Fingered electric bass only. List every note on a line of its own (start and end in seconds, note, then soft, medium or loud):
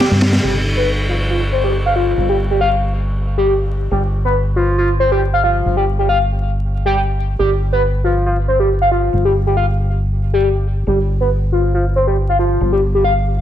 0.11 0.37 G2 loud
0.43 2.15 G1 medium
2.17 3.89 G1 medium
3.91 5.63 G1 medium
5.65 7.37 G1 medium
7.39 9.11 G1 medium
9.13 10.85 G1 medium
10.87 12.59 G1 medium
12.61 13.41 G1 medium